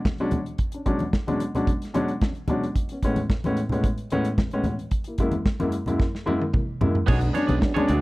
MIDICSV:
0, 0, Header, 1, 7, 480
1, 0, Start_track
1, 0, Tempo, 540054
1, 529, Time_signature, 4, 2, 24, 8
1, 7121, End_track
2, 0, Start_track
2, 0, Title_t, "Clean electric guitar"
2, 0, Program_c, 0, 27
2, 6279, Note_on_c, 0, 59, 82
2, 6285, Note_on_c, 0, 62, 81
2, 6293, Note_on_c, 0, 68, 87
2, 6296, Note_on_c, 0, 73, 91
2, 6397, Note_off_c, 0, 73, 0
2, 6401, Note_off_c, 0, 68, 0
2, 6411, Note_off_c, 0, 62, 0
2, 6473, Note_off_c, 0, 59, 0
2, 6517, Note_on_c, 0, 59, 64
2, 6523, Note_on_c, 0, 62, 60
2, 6527, Note_on_c, 0, 68, 66
2, 6531, Note_on_c, 0, 73, 75
2, 6636, Note_off_c, 0, 68, 0
2, 6637, Note_off_c, 0, 73, 0
2, 6640, Note_on_c, 0, 74, 58
2, 6643, Note_off_c, 0, 59, 0
2, 6643, Note_off_c, 0, 62, 0
2, 6647, Note_on_c, 0, 68, 53
2, 6653, Note_on_c, 0, 62, 59
2, 6654, Note_on_c, 0, 59, 58
2, 6747, Note_off_c, 0, 59, 0
2, 6751, Note_off_c, 0, 62, 0
2, 6751, Note_off_c, 0, 68, 0
2, 6763, Note_off_c, 0, 74, 0
2, 6882, Note_on_c, 0, 73, 81
2, 6889, Note_on_c, 0, 68, 75
2, 6894, Note_on_c, 0, 62, 78
2, 6897, Note_on_c, 0, 59, 61
2, 6977, Note_off_c, 0, 59, 0
2, 6985, Note_off_c, 0, 62, 0
2, 6987, Note_on_c, 0, 59, 61
2, 6988, Note_off_c, 0, 68, 0
2, 6995, Note_on_c, 0, 62, 61
2, 6998, Note_off_c, 0, 73, 0
2, 6998, Note_on_c, 0, 68, 65
2, 7001, Note_on_c, 0, 74, 73
2, 7113, Note_off_c, 0, 74, 0
2, 7114, Note_off_c, 0, 68, 0
2, 7118, Note_off_c, 0, 62, 0
2, 7121, Note_off_c, 0, 59, 0
2, 7121, End_track
3, 0, Start_track
3, 0, Title_t, "French horn section"
3, 0, Program_c, 1, 60
3, 6293, Note_on_c, 1, 61, 76
3, 6294, Note_on_c, 1, 59, 77
3, 6298, Note_on_c, 1, 62, 95
3, 6300, Note_on_c, 1, 56, 66
3, 6301, Note_on_c, 1, 54, 69
3, 7121, Note_off_c, 1, 54, 0
3, 7121, Note_off_c, 1, 56, 0
3, 7121, Note_off_c, 1, 59, 0
3, 7121, Note_off_c, 1, 61, 0
3, 7121, Note_off_c, 1, 62, 0
3, 7121, End_track
4, 0, Start_track
4, 0, Title_t, "Grand piano"
4, 0, Program_c, 2, 0
4, 178, Note_on_c, 2, 54, 62
4, 179, Note_on_c, 2, 61, 74
4, 180, Note_on_c, 2, 47, 70
4, 180, Note_on_c, 2, 56, 69
4, 184, Note_on_c, 2, 62, 91
4, 279, Note_off_c, 2, 61, 0
4, 279, Note_off_c, 2, 62, 0
4, 286, Note_off_c, 2, 47, 0
4, 286, Note_off_c, 2, 54, 0
4, 286, Note_off_c, 2, 56, 0
4, 292, Note_on_c, 2, 61, 21
4, 293, Note_on_c, 2, 62, 25
4, 341, Note_off_c, 2, 61, 0
4, 342, Note_off_c, 2, 62, 0
4, 660, Note_on_c, 2, 62, 26
4, 662, Note_on_c, 2, 61, 23
4, 704, Note_off_c, 2, 62, 0
4, 705, Note_off_c, 2, 61, 0
4, 761, Note_on_c, 2, 47, 65
4, 762, Note_on_c, 2, 56, 59
4, 763, Note_on_c, 2, 54, 64
4, 765, Note_on_c, 2, 62, 81
4, 768, Note_on_c, 2, 61, 64
4, 888, Note_off_c, 2, 47, 0
4, 889, Note_off_c, 2, 54, 0
4, 889, Note_off_c, 2, 56, 0
4, 890, Note_off_c, 2, 62, 0
4, 892, Note_off_c, 2, 61, 0
4, 1132, Note_on_c, 2, 54, 60
4, 1134, Note_on_c, 2, 47, 68
4, 1136, Note_on_c, 2, 61, 60
4, 1137, Note_on_c, 2, 56, 63
4, 1137, Note_on_c, 2, 62, 80
4, 1244, Note_off_c, 2, 54, 0
4, 1245, Note_off_c, 2, 47, 0
4, 1246, Note_off_c, 2, 56, 0
4, 1246, Note_off_c, 2, 61, 0
4, 1246, Note_off_c, 2, 62, 0
4, 1376, Note_on_c, 2, 47, 59
4, 1378, Note_on_c, 2, 56, 57
4, 1380, Note_on_c, 2, 61, 55
4, 1382, Note_on_c, 2, 54, 59
4, 1382, Note_on_c, 2, 62, 72
4, 1486, Note_off_c, 2, 47, 0
4, 1487, Note_off_c, 2, 56, 0
4, 1488, Note_off_c, 2, 61, 0
4, 1489, Note_off_c, 2, 54, 0
4, 1489, Note_off_c, 2, 62, 0
4, 1723, Note_on_c, 2, 54, 83
4, 1724, Note_on_c, 2, 47, 76
4, 1725, Note_on_c, 2, 61, 75
4, 1729, Note_on_c, 2, 56, 75
4, 1731, Note_on_c, 2, 62, 87
4, 1850, Note_off_c, 2, 54, 0
4, 1851, Note_off_c, 2, 47, 0
4, 1851, Note_off_c, 2, 61, 0
4, 1853, Note_off_c, 2, 56, 0
4, 1854, Note_off_c, 2, 62, 0
4, 1974, Note_on_c, 2, 62, 25
4, 1977, Note_on_c, 2, 61, 22
4, 2024, Note_off_c, 2, 62, 0
4, 2026, Note_off_c, 2, 61, 0
4, 2211, Note_on_c, 2, 54, 62
4, 2215, Note_on_c, 2, 47, 70
4, 2215, Note_on_c, 2, 56, 60
4, 2217, Note_on_c, 2, 61, 62
4, 2217, Note_on_c, 2, 62, 79
4, 2334, Note_off_c, 2, 54, 0
4, 2336, Note_off_c, 2, 47, 0
4, 2336, Note_off_c, 2, 56, 0
4, 2337, Note_off_c, 2, 62, 0
4, 2338, Note_off_c, 2, 61, 0
4, 2593, Note_on_c, 2, 61, 29
4, 2594, Note_on_c, 2, 59, 22
4, 2632, Note_off_c, 2, 59, 0
4, 2632, Note_off_c, 2, 61, 0
4, 2698, Note_on_c, 2, 45, 71
4, 2703, Note_on_c, 2, 59, 63
4, 2704, Note_on_c, 2, 56, 65
4, 2707, Note_on_c, 2, 61, 78
4, 2818, Note_off_c, 2, 45, 0
4, 2821, Note_off_c, 2, 56, 0
4, 2821, Note_off_c, 2, 59, 0
4, 2823, Note_off_c, 2, 61, 0
4, 3067, Note_on_c, 2, 45, 73
4, 3070, Note_on_c, 2, 56, 67
4, 3074, Note_on_c, 2, 59, 62
4, 3076, Note_on_c, 2, 61, 81
4, 3173, Note_off_c, 2, 45, 0
4, 3174, Note_off_c, 2, 56, 0
4, 3176, Note_off_c, 2, 59, 0
4, 3177, Note_off_c, 2, 61, 0
4, 3303, Note_on_c, 2, 45, 69
4, 3305, Note_on_c, 2, 56, 67
4, 3305, Note_on_c, 2, 59, 63
4, 3309, Note_on_c, 2, 61, 70
4, 3411, Note_off_c, 2, 45, 0
4, 3412, Note_off_c, 2, 56, 0
4, 3412, Note_off_c, 2, 59, 0
4, 3414, Note_off_c, 2, 61, 0
4, 3660, Note_on_c, 2, 45, 86
4, 3660, Note_on_c, 2, 56, 71
4, 3663, Note_on_c, 2, 59, 82
4, 3665, Note_on_c, 2, 61, 94
4, 3780, Note_off_c, 2, 45, 0
4, 3780, Note_off_c, 2, 56, 0
4, 3781, Note_off_c, 2, 59, 0
4, 3782, Note_off_c, 2, 61, 0
4, 4029, Note_on_c, 2, 45, 70
4, 4029, Note_on_c, 2, 56, 66
4, 4031, Note_on_c, 2, 61, 79
4, 4032, Note_on_c, 2, 59, 69
4, 4132, Note_off_c, 2, 59, 0
4, 4134, Note_off_c, 2, 45, 0
4, 4134, Note_off_c, 2, 56, 0
4, 4134, Note_off_c, 2, 61, 0
4, 4146, Note_on_c, 2, 59, 23
4, 4148, Note_on_c, 2, 61, 26
4, 4191, Note_off_c, 2, 59, 0
4, 4192, Note_off_c, 2, 61, 0
4, 4510, Note_on_c, 2, 64, 27
4, 4513, Note_on_c, 2, 58, 24
4, 4551, Note_off_c, 2, 64, 0
4, 4553, Note_off_c, 2, 58, 0
4, 4618, Note_on_c, 2, 56, 58
4, 4619, Note_on_c, 2, 42, 70
4, 4620, Note_on_c, 2, 64, 78
4, 4624, Note_on_c, 2, 58, 59
4, 4739, Note_off_c, 2, 42, 0
4, 4739, Note_off_c, 2, 56, 0
4, 4740, Note_off_c, 2, 64, 0
4, 4742, Note_off_c, 2, 58, 0
4, 4974, Note_on_c, 2, 42, 74
4, 4975, Note_on_c, 2, 56, 62
4, 4977, Note_on_c, 2, 58, 69
4, 4981, Note_on_c, 2, 64, 74
4, 5086, Note_off_c, 2, 42, 0
4, 5087, Note_off_c, 2, 56, 0
4, 5088, Note_off_c, 2, 58, 0
4, 5090, Note_off_c, 2, 64, 0
4, 5218, Note_on_c, 2, 42, 70
4, 5220, Note_on_c, 2, 58, 59
4, 5222, Note_on_c, 2, 56, 59
4, 5222, Note_on_c, 2, 64, 70
4, 5328, Note_off_c, 2, 42, 0
4, 5329, Note_off_c, 2, 58, 0
4, 5330, Note_off_c, 2, 56, 0
4, 5330, Note_off_c, 2, 64, 0
4, 5562, Note_on_c, 2, 42, 90
4, 5566, Note_on_c, 2, 56, 75
4, 5569, Note_on_c, 2, 58, 75
4, 5569, Note_on_c, 2, 64, 98
4, 5690, Note_off_c, 2, 42, 0
4, 5692, Note_off_c, 2, 56, 0
4, 5693, Note_off_c, 2, 58, 0
4, 5694, Note_off_c, 2, 64, 0
4, 5819, Note_on_c, 2, 64, 27
4, 5821, Note_on_c, 2, 58, 23
4, 5867, Note_off_c, 2, 64, 0
4, 5868, Note_off_c, 2, 58, 0
4, 6051, Note_on_c, 2, 56, 64
4, 6052, Note_on_c, 2, 64, 81
4, 6053, Note_on_c, 2, 42, 72
4, 6055, Note_on_c, 2, 58, 64
4, 6174, Note_off_c, 2, 56, 0
4, 6175, Note_off_c, 2, 42, 0
4, 6175, Note_off_c, 2, 64, 0
4, 6176, Note_off_c, 2, 58, 0
4, 6297, Note_on_c, 2, 47, 60
4, 6302, Note_on_c, 2, 54, 59
4, 6417, Note_off_c, 2, 47, 0
4, 6419, Note_off_c, 2, 54, 0
4, 6540, Note_on_c, 2, 61, 72
4, 6545, Note_on_c, 2, 62, 79
4, 6658, Note_off_c, 2, 61, 0
4, 6660, Note_off_c, 2, 62, 0
4, 6905, Note_on_c, 2, 56, 76
4, 6907, Note_on_c, 2, 61, 80
4, 6913, Note_on_c, 2, 62, 93
4, 7010, Note_off_c, 2, 56, 0
4, 7011, Note_off_c, 2, 61, 0
4, 7014, Note_off_c, 2, 62, 0
4, 7026, Note_on_c, 2, 47, 62
4, 7028, Note_on_c, 2, 54, 63
4, 7121, Note_off_c, 2, 47, 0
4, 7121, Note_off_c, 2, 54, 0
4, 7121, End_track
5, 0, Start_track
5, 0, Title_t, "Fingered electric bass"
5, 0, Program_c, 3, 33
5, 6295, Note_on_c, 3, 35, 113
5, 6486, Note_off_c, 3, 35, 0
5, 6659, Note_on_c, 3, 35, 93
5, 6749, Note_off_c, 3, 35, 0
5, 7017, Note_on_c, 3, 38, 93
5, 7121, Note_off_c, 3, 38, 0
5, 7121, End_track
6, 0, Start_track
6, 0, Title_t, "Muted clean electric guitar strokes"
6, 6407, Note_on_c, 9, 29, 41
6, 6496, Note_off_c, 9, 29, 0
6, 6757, Note_on_c, 9, 29, 40
6, 6846, Note_off_c, 9, 29, 0
6, 7121, End_track
7, 0, Start_track
7, 0, Title_t, "Drums"
7, 46, Note_on_c, 9, 36, 110
7, 50, Note_on_c, 9, 38, 113
7, 51, Note_on_c, 9, 62, 31
7, 51, Note_on_c, 9, 63, 51
7, 134, Note_off_c, 9, 36, 0
7, 139, Note_off_c, 9, 38, 0
7, 140, Note_off_c, 9, 62, 0
7, 140, Note_off_c, 9, 63, 0
7, 163, Note_on_c, 9, 42, 35
7, 252, Note_off_c, 9, 42, 0
7, 276, Note_on_c, 9, 42, 52
7, 284, Note_on_c, 9, 62, 35
7, 284, Note_on_c, 9, 63, 85
7, 284, Note_on_c, 9, 64, 80
7, 365, Note_off_c, 9, 42, 0
7, 373, Note_off_c, 9, 62, 0
7, 373, Note_off_c, 9, 63, 0
7, 373, Note_off_c, 9, 64, 0
7, 410, Note_on_c, 9, 42, 38
7, 499, Note_off_c, 9, 42, 0
7, 519, Note_on_c, 9, 42, 61
7, 523, Note_on_c, 9, 36, 88
7, 608, Note_off_c, 9, 42, 0
7, 612, Note_off_c, 9, 36, 0
7, 639, Note_on_c, 9, 42, 55
7, 728, Note_off_c, 9, 42, 0
7, 763, Note_on_c, 9, 42, 48
7, 764, Note_on_c, 9, 36, 64
7, 852, Note_off_c, 9, 42, 0
7, 853, Note_off_c, 9, 36, 0
7, 880, Note_on_c, 9, 42, 35
7, 891, Note_on_c, 9, 63, 76
7, 969, Note_off_c, 9, 42, 0
7, 980, Note_off_c, 9, 63, 0
7, 1006, Note_on_c, 9, 36, 84
7, 1006, Note_on_c, 9, 38, 101
7, 1013, Note_on_c, 9, 62, 31
7, 1095, Note_off_c, 9, 36, 0
7, 1095, Note_off_c, 9, 38, 0
7, 1101, Note_off_c, 9, 62, 0
7, 1136, Note_on_c, 9, 42, 37
7, 1137, Note_on_c, 9, 63, 76
7, 1225, Note_off_c, 9, 42, 0
7, 1226, Note_off_c, 9, 63, 0
7, 1246, Note_on_c, 9, 42, 59
7, 1247, Note_on_c, 9, 62, 35
7, 1335, Note_off_c, 9, 42, 0
7, 1336, Note_off_c, 9, 62, 0
7, 1375, Note_on_c, 9, 64, 66
7, 1382, Note_on_c, 9, 42, 43
7, 1464, Note_off_c, 9, 64, 0
7, 1471, Note_off_c, 9, 42, 0
7, 1487, Note_on_c, 9, 36, 105
7, 1488, Note_on_c, 9, 42, 63
7, 1575, Note_off_c, 9, 36, 0
7, 1577, Note_off_c, 9, 42, 0
7, 1616, Note_on_c, 9, 42, 49
7, 1632, Note_on_c, 9, 38, 31
7, 1705, Note_off_c, 9, 42, 0
7, 1720, Note_off_c, 9, 38, 0
7, 1728, Note_on_c, 9, 42, 60
7, 1737, Note_on_c, 9, 62, 27
7, 1737, Note_on_c, 9, 63, 59
7, 1817, Note_off_c, 9, 42, 0
7, 1826, Note_off_c, 9, 62, 0
7, 1826, Note_off_c, 9, 63, 0
7, 1852, Note_on_c, 9, 42, 41
7, 1941, Note_off_c, 9, 42, 0
7, 1967, Note_on_c, 9, 62, 33
7, 1967, Note_on_c, 9, 63, 48
7, 1969, Note_on_c, 9, 36, 116
7, 1977, Note_on_c, 9, 38, 108
7, 2056, Note_off_c, 9, 62, 0
7, 2056, Note_off_c, 9, 63, 0
7, 2058, Note_off_c, 9, 36, 0
7, 2066, Note_off_c, 9, 38, 0
7, 2089, Note_on_c, 9, 42, 37
7, 2177, Note_off_c, 9, 42, 0
7, 2201, Note_on_c, 9, 62, 36
7, 2201, Note_on_c, 9, 63, 82
7, 2201, Note_on_c, 9, 64, 81
7, 2204, Note_on_c, 9, 42, 52
7, 2290, Note_off_c, 9, 62, 0
7, 2290, Note_off_c, 9, 63, 0
7, 2290, Note_off_c, 9, 64, 0
7, 2293, Note_off_c, 9, 42, 0
7, 2342, Note_on_c, 9, 42, 39
7, 2431, Note_off_c, 9, 42, 0
7, 2449, Note_on_c, 9, 36, 92
7, 2449, Note_on_c, 9, 42, 65
7, 2449, Note_on_c, 9, 62, 25
7, 2538, Note_off_c, 9, 36, 0
7, 2538, Note_off_c, 9, 42, 0
7, 2538, Note_off_c, 9, 62, 0
7, 2568, Note_on_c, 9, 42, 55
7, 2657, Note_off_c, 9, 42, 0
7, 2689, Note_on_c, 9, 36, 67
7, 2690, Note_on_c, 9, 62, 32
7, 2691, Note_on_c, 9, 42, 62
7, 2778, Note_off_c, 9, 36, 0
7, 2779, Note_off_c, 9, 62, 0
7, 2780, Note_off_c, 9, 42, 0
7, 2809, Note_on_c, 9, 42, 40
7, 2809, Note_on_c, 9, 63, 72
7, 2898, Note_off_c, 9, 42, 0
7, 2898, Note_off_c, 9, 63, 0
7, 2930, Note_on_c, 9, 36, 101
7, 2930, Note_on_c, 9, 62, 30
7, 2934, Note_on_c, 9, 38, 98
7, 3019, Note_off_c, 9, 36, 0
7, 3019, Note_off_c, 9, 62, 0
7, 3023, Note_off_c, 9, 38, 0
7, 3058, Note_on_c, 9, 63, 86
7, 3063, Note_on_c, 9, 42, 42
7, 3147, Note_off_c, 9, 63, 0
7, 3152, Note_off_c, 9, 42, 0
7, 3171, Note_on_c, 9, 42, 57
7, 3260, Note_off_c, 9, 42, 0
7, 3283, Note_on_c, 9, 64, 72
7, 3309, Note_on_c, 9, 42, 47
7, 3372, Note_off_c, 9, 64, 0
7, 3398, Note_off_c, 9, 42, 0
7, 3411, Note_on_c, 9, 36, 100
7, 3411, Note_on_c, 9, 42, 73
7, 3500, Note_off_c, 9, 36, 0
7, 3500, Note_off_c, 9, 42, 0
7, 3534, Note_on_c, 9, 42, 44
7, 3623, Note_off_c, 9, 42, 0
7, 3647, Note_on_c, 9, 42, 59
7, 3664, Note_on_c, 9, 62, 27
7, 3664, Note_on_c, 9, 63, 64
7, 3736, Note_off_c, 9, 42, 0
7, 3753, Note_off_c, 9, 62, 0
7, 3753, Note_off_c, 9, 63, 0
7, 3774, Note_on_c, 9, 42, 49
7, 3862, Note_off_c, 9, 42, 0
7, 3892, Note_on_c, 9, 36, 111
7, 3894, Note_on_c, 9, 62, 34
7, 3894, Note_on_c, 9, 63, 51
7, 3896, Note_on_c, 9, 38, 113
7, 3981, Note_off_c, 9, 36, 0
7, 3982, Note_off_c, 9, 62, 0
7, 3982, Note_off_c, 9, 63, 0
7, 3985, Note_off_c, 9, 38, 0
7, 4011, Note_on_c, 9, 42, 37
7, 4100, Note_off_c, 9, 42, 0
7, 4121, Note_on_c, 9, 63, 78
7, 4121, Note_on_c, 9, 64, 79
7, 4125, Note_on_c, 9, 42, 58
7, 4210, Note_off_c, 9, 63, 0
7, 4210, Note_off_c, 9, 64, 0
7, 4214, Note_off_c, 9, 42, 0
7, 4258, Note_on_c, 9, 42, 40
7, 4346, Note_off_c, 9, 42, 0
7, 4365, Note_on_c, 9, 42, 61
7, 4369, Note_on_c, 9, 36, 81
7, 4454, Note_off_c, 9, 42, 0
7, 4457, Note_off_c, 9, 36, 0
7, 4481, Note_on_c, 9, 42, 52
7, 4570, Note_off_c, 9, 42, 0
7, 4603, Note_on_c, 9, 42, 57
7, 4608, Note_on_c, 9, 36, 71
7, 4692, Note_off_c, 9, 42, 0
7, 4697, Note_off_c, 9, 36, 0
7, 4724, Note_on_c, 9, 63, 73
7, 4726, Note_on_c, 9, 42, 42
7, 4813, Note_off_c, 9, 63, 0
7, 4815, Note_off_c, 9, 42, 0
7, 4849, Note_on_c, 9, 36, 106
7, 4850, Note_on_c, 9, 38, 95
7, 4853, Note_on_c, 9, 62, 28
7, 4938, Note_off_c, 9, 36, 0
7, 4938, Note_off_c, 9, 38, 0
7, 4942, Note_off_c, 9, 62, 0
7, 4976, Note_on_c, 9, 63, 81
7, 4978, Note_on_c, 9, 42, 41
7, 5065, Note_off_c, 9, 63, 0
7, 5067, Note_off_c, 9, 42, 0
7, 5085, Note_on_c, 9, 42, 63
7, 5173, Note_off_c, 9, 42, 0
7, 5208, Note_on_c, 9, 64, 67
7, 5223, Note_on_c, 9, 42, 46
7, 5297, Note_off_c, 9, 64, 0
7, 5311, Note_off_c, 9, 42, 0
7, 5329, Note_on_c, 9, 36, 109
7, 5332, Note_on_c, 9, 62, 31
7, 5335, Note_on_c, 9, 38, 54
7, 5418, Note_off_c, 9, 36, 0
7, 5421, Note_off_c, 9, 62, 0
7, 5424, Note_off_c, 9, 38, 0
7, 5465, Note_on_c, 9, 38, 51
7, 5553, Note_off_c, 9, 38, 0
7, 5576, Note_on_c, 9, 63, 64
7, 5665, Note_off_c, 9, 63, 0
7, 5701, Note_on_c, 9, 48, 60
7, 5790, Note_off_c, 9, 48, 0
7, 5808, Note_on_c, 9, 47, 79
7, 5812, Note_on_c, 9, 36, 111
7, 5815, Note_on_c, 9, 63, 49
7, 5897, Note_off_c, 9, 47, 0
7, 5901, Note_off_c, 9, 36, 0
7, 5903, Note_off_c, 9, 63, 0
7, 6052, Note_on_c, 9, 43, 90
7, 6055, Note_on_c, 9, 62, 40
7, 6055, Note_on_c, 9, 63, 82
7, 6055, Note_on_c, 9, 64, 89
7, 6141, Note_off_c, 9, 43, 0
7, 6144, Note_off_c, 9, 62, 0
7, 6144, Note_off_c, 9, 63, 0
7, 6144, Note_off_c, 9, 64, 0
7, 6178, Note_on_c, 9, 43, 83
7, 6267, Note_off_c, 9, 43, 0
7, 6287, Note_on_c, 9, 64, 58
7, 6292, Note_on_c, 9, 49, 98
7, 6294, Note_on_c, 9, 36, 113
7, 6376, Note_off_c, 9, 64, 0
7, 6381, Note_off_c, 9, 49, 0
7, 6382, Note_off_c, 9, 36, 0
7, 6410, Note_on_c, 9, 42, 59
7, 6499, Note_off_c, 9, 42, 0
7, 6530, Note_on_c, 9, 42, 61
7, 6532, Note_on_c, 9, 62, 36
7, 6619, Note_off_c, 9, 42, 0
7, 6621, Note_off_c, 9, 62, 0
7, 6652, Note_on_c, 9, 42, 42
7, 6655, Note_on_c, 9, 63, 83
7, 6741, Note_off_c, 9, 42, 0
7, 6744, Note_off_c, 9, 63, 0
7, 6772, Note_on_c, 9, 38, 123
7, 6773, Note_on_c, 9, 36, 110
7, 6778, Note_on_c, 9, 62, 32
7, 6861, Note_off_c, 9, 38, 0
7, 6862, Note_off_c, 9, 36, 0
7, 6867, Note_off_c, 9, 62, 0
7, 6901, Note_on_c, 9, 63, 91
7, 6905, Note_on_c, 9, 42, 41
7, 6990, Note_off_c, 9, 63, 0
7, 6994, Note_off_c, 9, 42, 0
7, 7008, Note_on_c, 9, 42, 75
7, 7012, Note_on_c, 9, 62, 41
7, 7097, Note_off_c, 9, 42, 0
7, 7101, Note_off_c, 9, 62, 0
7, 7121, End_track
0, 0, End_of_file